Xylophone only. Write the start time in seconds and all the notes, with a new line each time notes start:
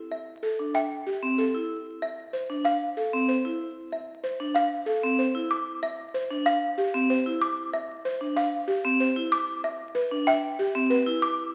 0.12 E5
0.75 G5
2.02 E5
2.65 F5
3.92 E5
4.56 F5
5.51 D6
5.83 E5
6.46 F5
7.41 D6
7.74 E5
8.37 F5
9.32 D6
9.64 E5
10.27 G5
11.22 D6